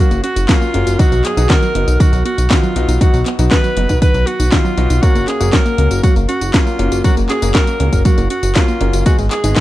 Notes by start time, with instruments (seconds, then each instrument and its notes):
Already playing: grand piano A#3 C#4 F#4 A#4
0.00 synth arpeggio sound F#3, alto saxophone F#4
0.11 analog synth bass F#1, synth arpeggio sound A#3, closed hi-hat, tambourine
0.24 synth arpeggio sound C#4, alto saxophone F#4, closed hi-hat
0.36 analog synth bass F#1, synth arpeggio sound F#4, closed hi-hat, tambourine
0.49 synth arpeggio sound F#3, grand piano A#3 C#4 F#4 A#4, alto saxophone F4, kick, snare, clap, closed hi-hat, tambourine
0.61 synth arpeggio sound A#3, tambourine
0.74 analog synth bass F#1, grand piano A#3 C#4 F#4 A#4, synth arpeggio sound C#4, closed hi-hat
0.87 analog synth bass F#1, synth arpeggio sound F#4, closed hi-hat, tambourine
0.99 synth arpeggio sound D#3, grand piano F#3 B3 D#4 F#4, alto saxophone F#4, kick, closed hi-hat, tambourine
1.12 analog synth bass B1, synth arpeggio sound F#3, closed hi-hat, tambourine
1.24 synth arpeggio sound B3, alto saxophone G#4, clap, closed hi-hat
1.37 analog synth bass B1, grand piano F#3 B3 D#4 F#4, synth arpeggio sound D#4, closed hi-hat, tambourine
1.50 synth arpeggio sound D#3, alto saxophone A#4, kick, snare, clap, closed hi-hat, tambourine
1.62 synth arpeggio sound F#3, closed hi-hat, tambourine
1.75 analog synth bass F#1, grand piano F#3 B3 D#4 F#4, synth arpeggio sound B3, closed hi-hat
1.88 analog synth bass B1, synth arpeggio sound D#4, closed hi-hat, tambourine
2.00 synth arpeggio sound D#3, alto saxophone F#4, kick, closed hi-hat, tambourine
2.13 analog synth bass B1, synth arpeggio sound F#3, closed hi-hat, tambourine
2.25 synth arpeggio sound B3, alto saxophone F#4, closed hi-hat
2.38 analog synth bass B1, synth arpeggio sound D#4, closed hi-hat, tambourine
2.51 synth arpeggio sound D#3, grand piano F#3 B3 D#4 F#4, alto saxophone F4, kick, snare, clap, closed hi-hat, tambourine
2.63 synth arpeggio sound F#3, tambourine
2.76 analog synth bass B1, grand piano F#3 B3 D#4 F#4, synth arpeggio sound B3, closed hi-hat
2.88 analog synth bass B1, synth arpeggio sound D#4, closed hi-hat, tambourine
3.01 synth arpeggio sound D#3, grand piano F#3 B3 D#4 F#4, alto saxophone F#4, kick, closed hi-hat, tambourine
3.13 analog synth bass B1, synth arpeggio sound F#3, closed hi-hat, tambourine
3.26 synth arpeggio sound B3, clap, closed hi-hat
3.39 analog synth bass B1, grand piano F#3 B3 D#4 F#4, synth arpeggio sound D#4, closed hi-hat, tambourine
3.51 synth arpeggio sound D#3, alto saxophone B4, kick, snare, clap, closed hi-hat, tambourine
3.64 synth arpeggio sound F#3, closed hi-hat, tambourine
3.77 analog synth bass F#1, grand piano F#3 B3 D#4 F#4, synth arpeggio sound B3, closed hi-hat
3.89 analog synth bass B1, synth arpeggio sound D#4, kick, closed hi-hat, tambourine
4.02 synth arpeggio sound D#3, alto saxophone B4, kick, closed hi-hat, tambourine
4.14 analog synth bass B1, synth arpeggio sound F#3, closed hi-hat, tambourine
4.27 synth arpeggio sound B3, alto saxophone F#4, closed hi-hat
4.40 analog synth bass B1, synth arpeggio sound D#4, closed hi-hat, tambourine
4.52 synth arpeggio sound D#3, grand piano F#3 B3 D#4 F#4, alto saxophone F4, kick, snare, clap, closed hi-hat, tambourine
4.65 synth arpeggio sound F#3, tambourine
4.77 analog synth bass B1, grand piano F#3 B3 D#4 F#4, synth arpeggio sound B3, closed hi-hat
4.90 analog synth bass B1, synth arpeggio sound D#4, closed hi-hat, tambourine
5.03 synth arpeggio sound F#3, grand piano A#3 C#4 F#4 A#4, alto saxophone F#4, kick, closed hi-hat, tambourine
5.15 analog synth bass F#1, synth arpeggio sound A#3, closed hi-hat, tambourine
5.28 synth arpeggio sound C#4, alto saxophone G#4, clap, closed hi-hat
5.40 analog synth bass F#1, grand piano A#3 C#4 F#4 A#4, synth arpeggio sound F#4, closed hi-hat, tambourine
5.53 synth arpeggio sound F#3, alto saxophone A#4, kick, snare, clap, closed hi-hat, tambourine
5.66 synth arpeggio sound A#3, closed hi-hat, tambourine
5.78 analog synth bass C#2, grand piano A#3 C#4 F#4 A#4, synth arpeggio sound C#4, closed hi-hat
5.91 analog synth bass F#1, synth arpeggio sound F#4, closed hi-hat, tambourine
6.04 synth arpeggio sound F#3, alto saxophone F#4, kick, closed hi-hat, tambourine
6.16 analog synth bass F#1, synth arpeggio sound A#3, closed hi-hat, tambourine
6.29 synth arpeggio sound C#4, alto saxophone F#4, closed hi-hat
6.41 analog synth bass F#1, synth arpeggio sound F#4, closed hi-hat, tambourine
6.54 synth arpeggio sound F#3, grand piano A#3 C#4 F#4 A#4, alto saxophone F4, kick, snare, clap, closed hi-hat, tambourine
6.67 synth arpeggio sound A#3, tambourine
6.79 analog synth bass F#1, grand piano A#3 C#4 F#4 A#4, synth arpeggio sound C#4, closed hi-hat
6.92 analog synth bass F#1, synth arpeggio sound F#4, closed hi-hat, tambourine
7.04 synth arpeggio sound F#3, grand piano A#3 C#4 F#4 A#4, alto saxophone F#4, kick, closed hi-hat, tambourine
7.17 analog synth bass F#1, synth arpeggio sound A#3, closed hi-hat, tambourine
7.30 synth arpeggio sound C#4, alto saxophone G#4, clap, closed hi-hat
7.42 analog synth bass F#1, grand piano A#3 C#4 F#4 A#4, synth arpeggio sound F#4, closed hi-hat, tambourine
7.55 synth arpeggio sound F#3, alto saxophone A#4, kick, snare, clap, closed hi-hat, tambourine
7.67 synth arpeggio sound A#3, closed hi-hat, tambourine
7.80 analog synth bass C#2, grand piano A#3 C#4 F#4 A#4, synth arpeggio sound C#4, closed hi-hat
7.93 analog synth bass F#1, synth arpeggio sound F#4, kick, closed hi-hat, tambourine
8.05 synth arpeggio sound F#3, alto saxophone F#4, kick, closed hi-hat, tambourine
8.18 analog synth bass F#1, synth arpeggio sound A#3, closed hi-hat, tambourine
8.30 synth arpeggio sound C#4, alto saxophone F#4, closed hi-hat
8.43 analog synth bass F#1, synth arpeggio sound F#4, closed hi-hat, tambourine
8.55 synth arpeggio sound F#3, grand piano A#3 C#4 F#4 A#4, alto saxophone F4, kick, snare, clap, closed hi-hat, tambourine
8.68 synth arpeggio sound A#3, tambourine
8.81 analog synth bass F#1, grand piano A#3 C#4 F#4 A#4, synth arpeggio sound C#4, closed hi-hat
8.93 analog synth bass F#1, synth arpeggio sound F#4, closed hi-hat, tambourine
9.06 synth arpeggio sound D#3, grand piano G#3 B3 D#4 G#4, alto saxophone F#4, kick, closed hi-hat, tambourine
9.19 analog synth bass G#1, synth arpeggio sound G#3, closed hi-hat, tambourine
9.31 synth arpeggio sound B3, alto saxophone G#4, clap, closed hi-hat
9.44 analog synth bass G#1, grand piano G#3 B3 D#4 G#4, synth arpeggio sound D#4, closed hi-hat, tambourine
9.56 synth arpeggio sound D#3, alto saxophone A#4, kick, snare, clap, closed hi-hat, tambourine